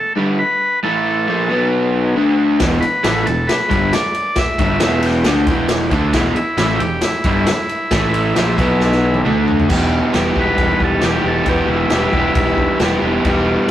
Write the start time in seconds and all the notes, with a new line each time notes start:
Already playing: A4
0.16 G2 D3 G3
0.39 B4
0.83 A2 E3 A3 A4
1.28 A#2 F3 A#3
1.49 B2 F#3 B3
2.16 D3 A3 D4
2.59 E1 E2 B2 E3, kick, snare, ride
2.81 B4, muted overdriven electric guitar stroke, muted picked electric bass stroke, ride
3.03 A1 A2 E3 A3, snare, ride
3.25 E1 E2 B2 A4, ride
3.47 B4, snare, ride
3.69 G1 G2 D3 G3, kick, ride
3.93 D5, snare, ride
4.14 ride
4.36 E5, kick, snare, ride
4.58 G1 G2 D3 G3, kick, ride
4.80 E1 E2 B2 E3 E5, snare, ride
5.03 G5, ride
5.24 D2 D3 A3 D4, snare, ride
5.47 E1 E2 B2 E3, kick, ride
5.68 snare, ride
5.90 D2 D3 A3 D4, kick, ride
6.13 E1 E2 B2 E3, kick, snare, ride
6.35 E4, muted picked electric bass stroke, muted overdriven electric guitar stroke, ride
6.57 A1 A2 E3 A3, snare, ride
6.79 E1 E2 B2 G4, ride
7.01 E4, snare, ride
7.24 G1 G2 D3 G3, kick, ride
7.46 snare, ride
7.69 ride
7.91 A1 A2 E3 A3, kick, snare, ride
8.14 ride
8.36 A#1 A#2 F3 A#3, snare, ride
8.58 B1 B2 F#3 B3, kick, ride
8.80 snare
8.91 snare
9.14 high tom
9.25 D2 D3 A3 D4, mid tom
9.48 floor tom
9.59 floor tom
9.68 E1 E2 B2 E3 G3 B3 G4, kick, crash
10.12 E1 E3 G3 B3, snare, crash
10.16 G4
10.34 E1 G3 B3 G4, kick
10.38 E3 B4
10.58 E1, kick, crash
10.80 E1 A4, kick
11.01 E1 E2 B2 E3 G3 B3 G4, snare, crash
11.24 E1 E3 G3 B3 G4 A4
11.46 E1 E2 B2 E3 G3 B3 G4, kick, crash
11.50 G4
11.68 E1 E4
11.90 E1 E3 G3 B3 E4, snare, crash
11.94 G4
12.13 E1 E3 G3 B3 G4, kick
12.35 E1, kick, crash
12.58 kick
12.80 E1 E2 B2 E3 G3 B3, snare, crash
12.84 G4
13.02 E1 B3 G4
13.06 E3 G3
13.24 E1 E2 B2 E3 G3 B3, kick, crash
13.28 G4